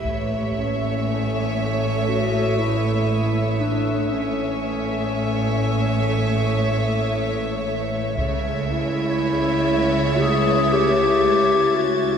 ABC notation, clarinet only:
X:1
M:4/4
L:1/8
Q:1/4=59
K:Amix
V:1 name="Clarinet"
z C3 F E2 D | C6- C z | z E3 ^G =G2 F |]